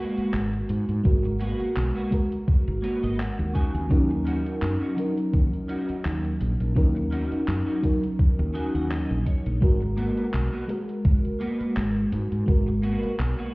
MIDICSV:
0, 0, Header, 1, 7, 480
1, 0, Start_track
1, 0, Key_signature, 5, "minor"
1, 0, Tempo, 714286
1, 707, Time_signature, 4, 2, 24, 8
1, 9100, End_track
2, 0, Start_track
2, 0, Title_t, "Clean electric guitar"
2, 0, Program_c, 0, 27
2, 0, Note_on_c, 0, 58, 108
2, 0, Note_on_c, 0, 59, 97
2, 0, Note_on_c, 0, 66, 116
2, 223, Note_off_c, 0, 58, 0
2, 226, Note_off_c, 0, 59, 0
2, 229, Note_off_c, 0, 66, 0
2, 938, Note_on_c, 0, 58, 109
2, 944, Note_on_c, 0, 59, 104
2, 951, Note_on_c, 0, 66, 118
2, 1128, Note_off_c, 0, 58, 0
2, 1132, Note_off_c, 0, 59, 0
2, 1135, Note_off_c, 0, 66, 0
2, 1309, Note_on_c, 0, 58, 85
2, 1315, Note_on_c, 0, 59, 78
2, 1322, Note_on_c, 0, 66, 95
2, 1422, Note_off_c, 0, 58, 0
2, 1425, Note_off_c, 0, 59, 0
2, 1429, Note_off_c, 0, 66, 0
2, 1897, Note_on_c, 0, 58, 104
2, 1903, Note_on_c, 0, 59, 94
2, 1906, Note_on_c, 0, 73, 60
2, 1911, Note_on_c, 0, 66, 121
2, 2028, Note_off_c, 0, 73, 0
2, 2036, Note_on_c, 0, 75, 71
2, 2138, Note_off_c, 0, 75, 0
2, 2142, Note_off_c, 0, 58, 0
2, 2143, Note_on_c, 0, 78, 72
2, 2146, Note_off_c, 0, 59, 0
2, 2149, Note_off_c, 0, 66, 0
2, 2368, Note_off_c, 0, 78, 0
2, 2376, Note_on_c, 0, 61, 90
2, 2382, Note_on_c, 0, 63, 88
2, 2385, Note_on_c, 0, 80, 66
2, 2390, Note_on_c, 0, 66, 96
2, 2608, Note_off_c, 0, 80, 0
2, 2674, Note_off_c, 0, 61, 0
2, 2678, Note_off_c, 0, 63, 0
2, 2681, Note_off_c, 0, 66, 0
2, 2857, Note_on_c, 0, 61, 110
2, 2865, Note_on_c, 0, 63, 103
2, 2871, Note_on_c, 0, 66, 122
2, 3048, Note_off_c, 0, 61, 0
2, 3052, Note_off_c, 0, 63, 0
2, 3055, Note_off_c, 0, 66, 0
2, 3230, Note_on_c, 0, 61, 89
2, 3236, Note_on_c, 0, 63, 78
2, 3244, Note_on_c, 0, 66, 97
2, 3343, Note_off_c, 0, 61, 0
2, 3346, Note_off_c, 0, 63, 0
2, 3350, Note_off_c, 0, 66, 0
2, 3818, Note_on_c, 0, 61, 109
2, 3825, Note_on_c, 0, 63, 102
2, 3831, Note_on_c, 0, 66, 116
2, 4063, Note_off_c, 0, 61, 0
2, 4066, Note_off_c, 0, 63, 0
2, 4069, Note_off_c, 0, 66, 0
2, 4779, Note_on_c, 0, 61, 112
2, 4786, Note_on_c, 0, 63, 103
2, 4792, Note_on_c, 0, 66, 125
2, 4969, Note_off_c, 0, 61, 0
2, 4972, Note_off_c, 0, 63, 0
2, 4975, Note_off_c, 0, 66, 0
2, 5151, Note_on_c, 0, 61, 86
2, 5158, Note_on_c, 0, 63, 80
2, 5165, Note_on_c, 0, 66, 93
2, 5263, Note_off_c, 0, 61, 0
2, 5267, Note_off_c, 0, 63, 0
2, 5270, Note_off_c, 0, 66, 0
2, 5737, Note_on_c, 0, 61, 111
2, 5741, Note_on_c, 0, 63, 101
2, 5745, Note_on_c, 0, 80, 65
2, 5749, Note_on_c, 0, 66, 115
2, 5867, Note_off_c, 0, 80, 0
2, 5876, Note_on_c, 0, 78, 69
2, 5978, Note_off_c, 0, 78, 0
2, 5982, Note_off_c, 0, 61, 0
2, 5984, Note_on_c, 0, 75, 74
2, 5985, Note_off_c, 0, 63, 0
2, 5988, Note_off_c, 0, 66, 0
2, 6208, Note_off_c, 0, 75, 0
2, 6225, Note_on_c, 0, 73, 71
2, 6449, Note_off_c, 0, 73, 0
2, 6698, Note_on_c, 0, 58, 111
2, 6705, Note_on_c, 0, 59, 102
2, 6712, Note_on_c, 0, 66, 123
2, 6888, Note_off_c, 0, 58, 0
2, 6892, Note_off_c, 0, 59, 0
2, 6895, Note_off_c, 0, 66, 0
2, 7071, Note_on_c, 0, 58, 86
2, 7077, Note_on_c, 0, 59, 77
2, 7084, Note_on_c, 0, 66, 91
2, 7183, Note_off_c, 0, 58, 0
2, 7186, Note_off_c, 0, 59, 0
2, 7190, Note_off_c, 0, 66, 0
2, 7661, Note_on_c, 0, 58, 106
2, 7668, Note_on_c, 0, 59, 100
2, 7674, Note_on_c, 0, 66, 120
2, 7904, Note_off_c, 0, 58, 0
2, 7907, Note_off_c, 0, 59, 0
2, 7910, Note_off_c, 0, 66, 0
2, 8617, Note_on_c, 0, 58, 110
2, 8624, Note_on_c, 0, 59, 104
2, 8631, Note_on_c, 0, 66, 127
2, 8808, Note_off_c, 0, 58, 0
2, 8811, Note_off_c, 0, 59, 0
2, 8815, Note_off_c, 0, 66, 0
2, 8990, Note_on_c, 0, 58, 88
2, 8997, Note_on_c, 0, 59, 81
2, 9003, Note_on_c, 0, 66, 98
2, 9100, Note_off_c, 0, 58, 0
2, 9100, Note_off_c, 0, 59, 0
2, 9100, Note_off_c, 0, 66, 0
2, 9100, End_track
3, 0, Start_track
3, 0, Title_t, "FM electric piano"
3, 0, Program_c, 1, 5
3, 0, Control_c, 1, 64, 127
3, 0, Note_on_c, 1, 56, 79
3, 0, Note_on_c, 1, 66, 74
3, 0, Note_on_c, 1, 70, 88
3, 676, Note_off_c, 1, 56, 0
3, 682, Note_off_c, 1, 66, 0
3, 686, Note_off_c, 1, 70, 0
3, 696, Note_on_c, 1, 56, 91
3, 709, Note_on_c, 1, 66, 83
3, 715, Note_on_c, 1, 70, 105
3, 1395, Note_off_c, 1, 56, 0
3, 1402, Note_off_c, 1, 66, 0
3, 1405, Note_off_c, 1, 70, 0
3, 1415, Note_on_c, 1, 56, 84
3, 1428, Note_on_c, 1, 66, 76
3, 1435, Note_on_c, 1, 70, 91
3, 2368, Note_off_c, 1, 56, 0
3, 2374, Note_off_c, 1, 66, 0
3, 2378, Note_off_c, 1, 70, 0
3, 2394, Control_c, 1, 64, 0
3, 2532, Control_c, 1, 64, 127
3, 2614, Note_on_c, 1, 54, 91
3, 2622, Note_on_c, 1, 61, 89
3, 2628, Note_on_c, 1, 63, 85
3, 2634, Note_on_c, 1, 70, 106
3, 3315, Note_off_c, 1, 54, 0
3, 3318, Note_off_c, 1, 61, 0
3, 3321, Note_off_c, 1, 63, 0
3, 3324, Note_off_c, 1, 70, 0
3, 3335, Note_on_c, 1, 54, 85
3, 3342, Note_on_c, 1, 61, 76
3, 3348, Note_on_c, 1, 63, 76
3, 3355, Note_on_c, 1, 70, 93
3, 4515, Note_off_c, 1, 54, 0
3, 4518, Note_off_c, 1, 61, 0
3, 4521, Note_off_c, 1, 63, 0
3, 4525, Note_off_c, 1, 70, 0
3, 4535, Note_on_c, 1, 54, 92
3, 4541, Note_on_c, 1, 61, 87
3, 4550, Note_on_c, 1, 63, 83
3, 4554, Note_on_c, 1, 70, 104
3, 5235, Note_off_c, 1, 54, 0
3, 5238, Note_off_c, 1, 61, 0
3, 5242, Note_off_c, 1, 63, 0
3, 5245, Note_off_c, 1, 70, 0
3, 5256, Note_on_c, 1, 54, 82
3, 5261, Note_on_c, 1, 61, 76
3, 5269, Note_on_c, 1, 63, 72
3, 5276, Note_on_c, 1, 70, 91
3, 6436, Note_off_c, 1, 54, 0
3, 6438, Note_off_c, 1, 61, 0
3, 6442, Note_off_c, 1, 63, 0
3, 6445, Note_off_c, 1, 70, 0
3, 6454, Note_on_c, 1, 56, 94
3, 6468, Note_on_c, 1, 66, 88
3, 6475, Note_on_c, 1, 70, 104
3, 6476, Control_c, 1, 64, 0
3, 6581, Control_c, 1, 64, 127
3, 7155, Note_off_c, 1, 56, 0
3, 7161, Note_off_c, 1, 66, 0
3, 7165, Note_off_c, 1, 70, 0
3, 7172, Note_on_c, 1, 56, 85
3, 7186, Note_on_c, 1, 66, 77
3, 7192, Note_on_c, 1, 70, 92
3, 8353, Note_off_c, 1, 56, 0
3, 8360, Note_off_c, 1, 66, 0
3, 8363, Note_off_c, 1, 70, 0
3, 8373, Note_on_c, 1, 56, 92
3, 8387, Note_on_c, 1, 66, 85
3, 8392, Note_on_c, 1, 70, 102
3, 9074, Note_off_c, 1, 56, 0
3, 9081, Note_off_c, 1, 66, 0
3, 9084, Note_off_c, 1, 70, 0
3, 9100, End_track
4, 0, Start_track
4, 0, Title_t, "Fretless electric bass"
4, 0, Program_c, 2, 35
4, 225, Note_on_c, 2, 32, 85
4, 409, Note_off_c, 2, 32, 0
4, 467, Note_on_c, 2, 44, 93
4, 564, Note_off_c, 2, 44, 0
4, 597, Note_on_c, 2, 44, 87
4, 678, Note_off_c, 2, 44, 0
4, 707, Note_on_c, 2, 32, 91
4, 1023, Note_off_c, 2, 32, 0
4, 1187, Note_on_c, 2, 35, 93
4, 1284, Note_off_c, 2, 35, 0
4, 1799, Note_on_c, 2, 32, 93
4, 1879, Note_off_c, 2, 32, 0
4, 2038, Note_on_c, 2, 32, 78
4, 2209, Note_off_c, 2, 32, 0
4, 2277, Note_on_c, 2, 39, 94
4, 2358, Note_off_c, 2, 39, 0
4, 2515, Note_on_c, 2, 39, 87
4, 2597, Note_off_c, 2, 39, 0
4, 2627, Note_on_c, 2, 39, 99
4, 2943, Note_off_c, 2, 39, 0
4, 3105, Note_on_c, 2, 42, 92
4, 3203, Note_off_c, 2, 42, 0
4, 3587, Note_on_c, 2, 39, 78
4, 3684, Note_off_c, 2, 39, 0
4, 4068, Note_on_c, 2, 39, 85
4, 4251, Note_off_c, 2, 39, 0
4, 4308, Note_on_c, 2, 34, 92
4, 4405, Note_off_c, 2, 34, 0
4, 4439, Note_on_c, 2, 34, 87
4, 4518, Note_off_c, 2, 34, 0
4, 4545, Note_on_c, 2, 39, 92
4, 4862, Note_off_c, 2, 39, 0
4, 5026, Note_on_c, 2, 42, 93
4, 5124, Note_off_c, 2, 42, 0
4, 5639, Note_on_c, 2, 39, 95
4, 5718, Note_off_c, 2, 39, 0
4, 5878, Note_on_c, 2, 39, 75
4, 6049, Note_off_c, 2, 39, 0
4, 6119, Note_on_c, 2, 34, 92
4, 6199, Note_off_c, 2, 34, 0
4, 6360, Note_on_c, 2, 34, 86
4, 6439, Note_off_c, 2, 34, 0
4, 6466, Note_on_c, 2, 32, 95
4, 6783, Note_off_c, 2, 32, 0
4, 6948, Note_on_c, 2, 35, 93
4, 7045, Note_off_c, 2, 35, 0
4, 7426, Note_on_c, 2, 32, 79
4, 7523, Note_off_c, 2, 32, 0
4, 7908, Note_on_c, 2, 32, 88
4, 8091, Note_off_c, 2, 32, 0
4, 8147, Note_on_c, 2, 44, 93
4, 8244, Note_off_c, 2, 44, 0
4, 8278, Note_on_c, 2, 44, 86
4, 8358, Note_off_c, 2, 44, 0
4, 8387, Note_on_c, 2, 32, 96
4, 8704, Note_off_c, 2, 32, 0
4, 8865, Note_on_c, 2, 35, 94
4, 8963, Note_off_c, 2, 35, 0
4, 9100, End_track
5, 0, Start_track
5, 0, Title_t, "Muted clean electric guitar strokes"
5, 459, Note_on_c, 9, 29, 32
5, 526, Note_off_c, 9, 29, 0
5, 829, Note_on_c, 9, 29, 86
5, 896, Note_off_c, 9, 29, 0
5, 1550, Note_on_c, 9, 29, 33
5, 1617, Note_off_c, 9, 29, 0
5, 2749, Note_on_c, 9, 29, 87
5, 2816, Note_off_c, 9, 29, 0
5, 3470, Note_on_c, 9, 29, 33
5, 3537, Note_off_c, 9, 29, 0
5, 4300, Note_on_c, 9, 29, 32
5, 4367, Note_off_c, 9, 29, 0
5, 4671, Note_on_c, 9, 29, 87
5, 4738, Note_off_c, 9, 29, 0
5, 5390, Note_on_c, 9, 29, 33
5, 5457, Note_off_c, 9, 29, 0
5, 6218, Note_on_c, 9, 29, 33
5, 6285, Note_off_c, 9, 29, 0
5, 6590, Note_on_c, 9, 29, 88
5, 6657, Note_off_c, 9, 29, 0
5, 7313, Note_on_c, 9, 29, 33
5, 7380, Note_off_c, 9, 29, 0
5, 8141, Note_on_c, 9, 29, 32
5, 8208, Note_off_c, 9, 29, 0
5, 8511, Note_on_c, 9, 29, 86
5, 8579, Note_off_c, 9, 29, 0
5, 9100, End_track
6, 0, Start_track
6, 0, Title_t, "Muted fretless electric bass strokes"
6, 120, Note_on_c, 9, 29, 42
6, 187, Note_off_c, 9, 29, 0
6, 1078, Note_on_c, 9, 29, 40
6, 1145, Note_off_c, 9, 29, 0
6, 3962, Note_on_c, 9, 29, 41
6, 4029, Note_off_c, 9, 29, 0
6, 4922, Note_on_c, 9, 29, 41
6, 4989, Note_off_c, 9, 29, 0
6, 7799, Note_on_c, 9, 29, 42
6, 7866, Note_off_c, 9, 29, 0
6, 8758, Note_on_c, 9, 29, 41
6, 8825, Note_off_c, 9, 29, 0
6, 9100, End_track
7, 0, Start_track
7, 0, Title_t, "Drums"
7, 118, Note_on_c, 9, 42, 55
7, 185, Note_off_c, 9, 42, 0
7, 226, Note_on_c, 9, 39, 112
7, 226, Note_on_c, 9, 42, 52
7, 293, Note_off_c, 9, 39, 0
7, 293, Note_off_c, 9, 42, 0
7, 358, Note_on_c, 9, 42, 27
7, 425, Note_off_c, 9, 42, 0
7, 464, Note_on_c, 9, 42, 93
7, 532, Note_off_c, 9, 42, 0
7, 597, Note_on_c, 9, 42, 54
7, 664, Note_off_c, 9, 42, 0
7, 705, Note_on_c, 9, 42, 52
7, 706, Note_on_c, 9, 36, 120
7, 772, Note_off_c, 9, 42, 0
7, 773, Note_off_c, 9, 36, 0
7, 838, Note_on_c, 9, 42, 26
7, 905, Note_off_c, 9, 42, 0
7, 944, Note_on_c, 9, 42, 96
7, 1012, Note_off_c, 9, 42, 0
7, 1076, Note_on_c, 9, 42, 52
7, 1143, Note_off_c, 9, 42, 0
7, 1185, Note_on_c, 9, 39, 124
7, 1185, Note_on_c, 9, 42, 55
7, 1252, Note_off_c, 9, 39, 0
7, 1252, Note_off_c, 9, 42, 0
7, 1318, Note_on_c, 9, 42, 25
7, 1385, Note_off_c, 9, 42, 0
7, 1425, Note_on_c, 9, 36, 62
7, 1426, Note_on_c, 9, 42, 93
7, 1493, Note_off_c, 9, 36, 0
7, 1494, Note_off_c, 9, 42, 0
7, 1559, Note_on_c, 9, 42, 53
7, 1626, Note_off_c, 9, 42, 0
7, 1665, Note_on_c, 9, 36, 121
7, 1666, Note_on_c, 9, 42, 54
7, 1733, Note_off_c, 9, 36, 0
7, 1733, Note_off_c, 9, 42, 0
7, 1798, Note_on_c, 9, 42, 27
7, 1866, Note_off_c, 9, 42, 0
7, 1907, Note_on_c, 9, 42, 95
7, 1974, Note_off_c, 9, 42, 0
7, 2041, Note_on_c, 9, 42, 56
7, 2108, Note_off_c, 9, 42, 0
7, 2149, Note_on_c, 9, 39, 117
7, 2149, Note_on_c, 9, 42, 51
7, 2216, Note_off_c, 9, 39, 0
7, 2216, Note_off_c, 9, 42, 0
7, 2281, Note_on_c, 9, 42, 27
7, 2349, Note_off_c, 9, 42, 0
7, 2386, Note_on_c, 9, 36, 65
7, 2388, Note_on_c, 9, 42, 96
7, 2453, Note_off_c, 9, 36, 0
7, 2455, Note_off_c, 9, 42, 0
7, 2521, Note_on_c, 9, 42, 53
7, 2588, Note_off_c, 9, 42, 0
7, 2626, Note_on_c, 9, 36, 123
7, 2629, Note_on_c, 9, 42, 52
7, 2693, Note_off_c, 9, 36, 0
7, 2696, Note_off_c, 9, 42, 0
7, 2760, Note_on_c, 9, 42, 26
7, 2827, Note_off_c, 9, 42, 0
7, 2867, Note_on_c, 9, 42, 94
7, 2934, Note_off_c, 9, 42, 0
7, 2999, Note_on_c, 9, 42, 52
7, 3066, Note_off_c, 9, 42, 0
7, 3105, Note_on_c, 9, 39, 124
7, 3105, Note_on_c, 9, 42, 53
7, 3172, Note_off_c, 9, 39, 0
7, 3172, Note_off_c, 9, 42, 0
7, 3238, Note_on_c, 9, 42, 25
7, 3305, Note_off_c, 9, 42, 0
7, 3346, Note_on_c, 9, 42, 92
7, 3413, Note_off_c, 9, 42, 0
7, 3478, Note_on_c, 9, 42, 52
7, 3545, Note_off_c, 9, 42, 0
7, 3585, Note_on_c, 9, 36, 126
7, 3586, Note_on_c, 9, 42, 52
7, 3653, Note_off_c, 9, 36, 0
7, 3654, Note_off_c, 9, 42, 0
7, 3719, Note_on_c, 9, 42, 27
7, 3786, Note_off_c, 9, 42, 0
7, 3825, Note_on_c, 9, 42, 92
7, 3892, Note_off_c, 9, 42, 0
7, 3957, Note_on_c, 9, 42, 54
7, 4025, Note_off_c, 9, 42, 0
7, 4065, Note_on_c, 9, 39, 119
7, 4065, Note_on_c, 9, 42, 51
7, 4132, Note_off_c, 9, 39, 0
7, 4132, Note_off_c, 9, 42, 0
7, 4198, Note_on_c, 9, 42, 26
7, 4265, Note_off_c, 9, 42, 0
7, 4305, Note_on_c, 9, 42, 91
7, 4372, Note_off_c, 9, 42, 0
7, 4437, Note_on_c, 9, 42, 53
7, 4504, Note_off_c, 9, 42, 0
7, 4545, Note_on_c, 9, 36, 121
7, 4547, Note_on_c, 9, 42, 49
7, 4612, Note_off_c, 9, 36, 0
7, 4615, Note_off_c, 9, 42, 0
7, 4679, Note_on_c, 9, 42, 26
7, 4747, Note_off_c, 9, 42, 0
7, 4787, Note_on_c, 9, 42, 91
7, 4855, Note_off_c, 9, 42, 0
7, 4918, Note_on_c, 9, 42, 49
7, 4985, Note_off_c, 9, 42, 0
7, 5026, Note_on_c, 9, 39, 123
7, 5026, Note_on_c, 9, 42, 54
7, 5094, Note_off_c, 9, 39, 0
7, 5094, Note_off_c, 9, 42, 0
7, 5160, Note_on_c, 9, 42, 25
7, 5227, Note_off_c, 9, 42, 0
7, 5265, Note_on_c, 9, 36, 62
7, 5266, Note_on_c, 9, 42, 85
7, 5333, Note_off_c, 9, 36, 0
7, 5333, Note_off_c, 9, 42, 0
7, 5399, Note_on_c, 9, 42, 51
7, 5466, Note_off_c, 9, 42, 0
7, 5505, Note_on_c, 9, 36, 122
7, 5507, Note_on_c, 9, 42, 50
7, 5572, Note_off_c, 9, 36, 0
7, 5574, Note_off_c, 9, 42, 0
7, 5639, Note_on_c, 9, 42, 25
7, 5706, Note_off_c, 9, 42, 0
7, 5747, Note_on_c, 9, 42, 87
7, 5814, Note_off_c, 9, 42, 0
7, 5880, Note_on_c, 9, 42, 51
7, 5947, Note_off_c, 9, 42, 0
7, 5988, Note_on_c, 9, 39, 120
7, 5988, Note_on_c, 9, 42, 51
7, 6056, Note_off_c, 9, 39, 0
7, 6056, Note_off_c, 9, 42, 0
7, 6119, Note_on_c, 9, 42, 26
7, 6186, Note_off_c, 9, 42, 0
7, 6225, Note_on_c, 9, 36, 63
7, 6226, Note_on_c, 9, 42, 90
7, 6292, Note_off_c, 9, 36, 0
7, 6293, Note_off_c, 9, 42, 0
7, 6358, Note_on_c, 9, 42, 50
7, 6425, Note_off_c, 9, 42, 0
7, 6465, Note_on_c, 9, 36, 116
7, 6466, Note_on_c, 9, 42, 48
7, 6532, Note_off_c, 9, 36, 0
7, 6533, Note_off_c, 9, 42, 0
7, 6597, Note_on_c, 9, 42, 24
7, 6664, Note_off_c, 9, 42, 0
7, 6704, Note_on_c, 9, 42, 87
7, 6771, Note_off_c, 9, 42, 0
7, 6837, Note_on_c, 9, 42, 50
7, 6904, Note_off_c, 9, 42, 0
7, 6946, Note_on_c, 9, 39, 120
7, 6946, Note_on_c, 9, 42, 50
7, 7013, Note_off_c, 9, 39, 0
7, 7013, Note_off_c, 9, 42, 0
7, 7079, Note_on_c, 9, 42, 24
7, 7146, Note_off_c, 9, 42, 0
7, 7185, Note_on_c, 9, 42, 84
7, 7252, Note_off_c, 9, 42, 0
7, 7319, Note_on_c, 9, 42, 49
7, 7386, Note_off_c, 9, 42, 0
7, 7425, Note_on_c, 9, 36, 121
7, 7426, Note_on_c, 9, 42, 48
7, 7493, Note_off_c, 9, 36, 0
7, 7493, Note_off_c, 9, 42, 0
7, 7559, Note_on_c, 9, 42, 24
7, 7627, Note_off_c, 9, 42, 0
7, 7666, Note_on_c, 9, 42, 85
7, 7734, Note_off_c, 9, 42, 0
7, 7798, Note_on_c, 9, 42, 50
7, 7865, Note_off_c, 9, 42, 0
7, 7907, Note_on_c, 9, 39, 117
7, 7907, Note_on_c, 9, 42, 48
7, 7974, Note_off_c, 9, 39, 0
7, 7974, Note_off_c, 9, 42, 0
7, 8038, Note_on_c, 9, 42, 25
7, 8105, Note_off_c, 9, 42, 0
7, 8147, Note_on_c, 9, 42, 88
7, 8214, Note_off_c, 9, 42, 0
7, 8279, Note_on_c, 9, 42, 50
7, 8346, Note_off_c, 9, 42, 0
7, 8386, Note_on_c, 9, 36, 110
7, 8388, Note_on_c, 9, 42, 49
7, 8453, Note_off_c, 9, 36, 0
7, 8455, Note_off_c, 9, 42, 0
7, 8519, Note_on_c, 9, 42, 24
7, 8586, Note_off_c, 9, 42, 0
7, 8624, Note_on_c, 9, 42, 86
7, 8691, Note_off_c, 9, 42, 0
7, 8757, Note_on_c, 9, 42, 49
7, 8824, Note_off_c, 9, 42, 0
7, 8867, Note_on_c, 9, 39, 117
7, 8867, Note_on_c, 9, 42, 50
7, 8934, Note_off_c, 9, 39, 0
7, 8934, Note_off_c, 9, 42, 0
7, 8999, Note_on_c, 9, 42, 24
7, 9067, Note_off_c, 9, 42, 0
7, 9100, End_track
0, 0, End_of_file